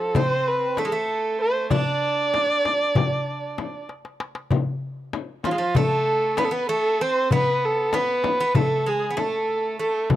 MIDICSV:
0, 0, Header, 1, 5, 480
1, 0, Start_track
1, 0, Tempo, 621762
1, 1323, Time_signature, 9, 3, 24, 8
1, 7845, End_track
2, 0, Start_track
2, 0, Title_t, "Kamancheh"
2, 0, Program_c, 0, 110
2, 0, Note_on_c, 0, 69, 82
2, 127, Note_on_c, 0, 72, 100
2, 139, Note_off_c, 0, 69, 0
2, 369, Note_on_c, 0, 71, 89
2, 380, Note_off_c, 0, 72, 0
2, 604, Note_on_c, 0, 69, 83
2, 616, Note_off_c, 0, 71, 0
2, 1082, Note_off_c, 0, 69, 0
2, 1087, Note_on_c, 0, 72, 94
2, 1309, Note_off_c, 0, 72, 0
2, 1329, Note_on_c, 0, 74, 106
2, 2977, Note_off_c, 0, 74, 0
2, 4203, Note_on_c, 0, 65, 88
2, 4445, Note_on_c, 0, 69, 105
2, 4457, Note_off_c, 0, 65, 0
2, 4930, Note_on_c, 0, 71, 97
2, 4942, Note_off_c, 0, 69, 0
2, 4975, Note_on_c, 0, 69, 71
2, 4987, Note_off_c, 0, 71, 0
2, 5036, Note_on_c, 0, 71, 88
2, 5047, Note_off_c, 0, 69, 0
2, 5161, Note_off_c, 0, 71, 0
2, 5165, Note_on_c, 0, 69, 95
2, 5415, Note_on_c, 0, 72, 97
2, 5427, Note_off_c, 0, 69, 0
2, 5649, Note_off_c, 0, 72, 0
2, 5658, Note_on_c, 0, 71, 109
2, 5904, Note_on_c, 0, 69, 97
2, 5916, Note_off_c, 0, 71, 0
2, 6142, Note_on_c, 0, 71, 93
2, 6154, Note_off_c, 0, 69, 0
2, 6610, Note_on_c, 0, 69, 93
2, 6622, Note_off_c, 0, 71, 0
2, 6857, Note_on_c, 0, 68, 83
2, 6868, Note_off_c, 0, 69, 0
2, 7092, Note_on_c, 0, 69, 84
2, 7104, Note_off_c, 0, 68, 0
2, 7560, Note_off_c, 0, 69, 0
2, 7565, Note_on_c, 0, 69, 74
2, 7785, Note_off_c, 0, 69, 0
2, 7845, End_track
3, 0, Start_track
3, 0, Title_t, "Bouzouki"
3, 0, Program_c, 1, 25
3, 0, Note_on_c, 1, 53, 54
3, 121, Note_on_c, 1, 60, 73
3, 137, Note_off_c, 1, 53, 0
3, 600, Note_off_c, 1, 60, 0
3, 603, Note_on_c, 1, 57, 68
3, 655, Note_on_c, 1, 56, 60
3, 658, Note_off_c, 1, 57, 0
3, 709, Note_off_c, 1, 56, 0
3, 711, Note_on_c, 1, 57, 66
3, 1321, Note_on_c, 1, 62, 71
3, 1342, Note_off_c, 1, 57, 0
3, 2974, Note_off_c, 1, 62, 0
3, 4207, Note_on_c, 1, 53, 66
3, 4251, Note_off_c, 1, 53, 0
3, 4254, Note_on_c, 1, 56, 56
3, 4306, Note_off_c, 1, 56, 0
3, 4309, Note_on_c, 1, 53, 69
3, 4434, Note_off_c, 1, 53, 0
3, 4451, Note_on_c, 1, 57, 76
3, 4921, Note_off_c, 1, 57, 0
3, 4924, Note_on_c, 1, 59, 79
3, 5017, Note_off_c, 1, 59, 0
3, 5026, Note_on_c, 1, 59, 70
3, 5162, Note_off_c, 1, 59, 0
3, 5165, Note_on_c, 1, 57, 84
3, 5410, Note_off_c, 1, 57, 0
3, 5413, Note_on_c, 1, 60, 86
3, 5649, Note_off_c, 1, 60, 0
3, 5652, Note_on_c, 1, 59, 88
3, 6117, Note_off_c, 1, 59, 0
3, 6127, Note_on_c, 1, 59, 85
3, 6479, Note_off_c, 1, 59, 0
3, 6488, Note_on_c, 1, 59, 77
3, 6596, Note_off_c, 1, 59, 0
3, 6601, Note_on_c, 1, 57, 71
3, 6824, Note_off_c, 1, 57, 0
3, 6843, Note_on_c, 1, 56, 70
3, 7014, Note_off_c, 1, 56, 0
3, 7029, Note_on_c, 1, 59, 58
3, 7075, Note_off_c, 1, 59, 0
3, 7078, Note_on_c, 1, 57, 70
3, 7552, Note_off_c, 1, 57, 0
3, 7561, Note_on_c, 1, 57, 64
3, 7783, Note_off_c, 1, 57, 0
3, 7845, End_track
4, 0, Start_track
4, 0, Title_t, "Darbuka"
4, 114, Note_on_c, 9, 64, 83
4, 191, Note_off_c, 9, 64, 0
4, 598, Note_on_c, 9, 63, 60
4, 675, Note_off_c, 9, 63, 0
4, 835, Note_on_c, 9, 62, 24
4, 912, Note_off_c, 9, 62, 0
4, 1316, Note_on_c, 9, 64, 81
4, 1393, Note_off_c, 9, 64, 0
4, 1562, Note_on_c, 9, 62, 22
4, 1639, Note_off_c, 9, 62, 0
4, 1804, Note_on_c, 9, 63, 65
4, 1882, Note_off_c, 9, 63, 0
4, 2047, Note_on_c, 9, 63, 57
4, 2124, Note_off_c, 9, 63, 0
4, 2165, Note_on_c, 9, 62, 23
4, 2243, Note_off_c, 9, 62, 0
4, 2279, Note_on_c, 9, 64, 83
4, 2356, Note_off_c, 9, 64, 0
4, 2765, Note_on_c, 9, 63, 56
4, 2842, Note_off_c, 9, 63, 0
4, 3005, Note_on_c, 9, 63, 46
4, 3082, Note_off_c, 9, 63, 0
4, 3126, Note_on_c, 9, 62, 56
4, 3203, Note_off_c, 9, 62, 0
4, 3243, Note_on_c, 9, 63, 76
4, 3321, Note_off_c, 9, 63, 0
4, 3359, Note_on_c, 9, 62, 76
4, 3436, Note_off_c, 9, 62, 0
4, 3478, Note_on_c, 9, 64, 81
4, 3555, Note_off_c, 9, 64, 0
4, 3963, Note_on_c, 9, 63, 65
4, 4041, Note_off_c, 9, 63, 0
4, 4200, Note_on_c, 9, 63, 62
4, 4278, Note_off_c, 9, 63, 0
4, 4321, Note_on_c, 9, 62, 24
4, 4398, Note_off_c, 9, 62, 0
4, 4438, Note_on_c, 9, 64, 90
4, 4515, Note_off_c, 9, 64, 0
4, 4919, Note_on_c, 9, 63, 72
4, 4996, Note_off_c, 9, 63, 0
4, 5159, Note_on_c, 9, 62, 26
4, 5236, Note_off_c, 9, 62, 0
4, 5641, Note_on_c, 9, 64, 85
4, 5718, Note_off_c, 9, 64, 0
4, 6121, Note_on_c, 9, 63, 74
4, 6198, Note_off_c, 9, 63, 0
4, 6358, Note_on_c, 9, 63, 61
4, 6435, Note_off_c, 9, 63, 0
4, 6478, Note_on_c, 9, 62, 24
4, 6555, Note_off_c, 9, 62, 0
4, 6598, Note_on_c, 9, 64, 93
4, 6675, Note_off_c, 9, 64, 0
4, 7079, Note_on_c, 9, 63, 74
4, 7157, Note_off_c, 9, 63, 0
4, 7324, Note_on_c, 9, 62, 25
4, 7401, Note_off_c, 9, 62, 0
4, 7796, Note_on_c, 9, 64, 91
4, 7845, Note_off_c, 9, 64, 0
4, 7845, End_track
5, 0, Start_track
5, 0, Title_t, "Frame drum"
5, 115, Note_on_c, 9, 64, 86
5, 192, Note_off_c, 9, 64, 0
5, 595, Note_on_c, 9, 64, 59
5, 673, Note_off_c, 9, 64, 0
5, 1317, Note_on_c, 9, 64, 84
5, 1395, Note_off_c, 9, 64, 0
5, 1808, Note_on_c, 9, 64, 58
5, 1885, Note_off_c, 9, 64, 0
5, 2049, Note_on_c, 9, 64, 54
5, 2126, Note_off_c, 9, 64, 0
5, 2285, Note_on_c, 9, 64, 97
5, 2362, Note_off_c, 9, 64, 0
5, 2767, Note_on_c, 9, 64, 62
5, 2845, Note_off_c, 9, 64, 0
5, 3486, Note_on_c, 9, 64, 89
5, 3563, Note_off_c, 9, 64, 0
5, 3963, Note_on_c, 9, 64, 64
5, 4040, Note_off_c, 9, 64, 0
5, 4201, Note_on_c, 9, 64, 68
5, 4278, Note_off_c, 9, 64, 0
5, 4448, Note_on_c, 9, 64, 90
5, 4525, Note_off_c, 9, 64, 0
5, 4924, Note_on_c, 9, 64, 73
5, 5001, Note_off_c, 9, 64, 0
5, 5647, Note_on_c, 9, 64, 78
5, 5724, Note_off_c, 9, 64, 0
5, 6120, Note_on_c, 9, 64, 67
5, 6197, Note_off_c, 9, 64, 0
5, 6364, Note_on_c, 9, 64, 74
5, 6441, Note_off_c, 9, 64, 0
5, 6604, Note_on_c, 9, 64, 90
5, 6681, Note_off_c, 9, 64, 0
5, 7084, Note_on_c, 9, 64, 63
5, 7161, Note_off_c, 9, 64, 0
5, 7799, Note_on_c, 9, 64, 85
5, 7845, Note_off_c, 9, 64, 0
5, 7845, End_track
0, 0, End_of_file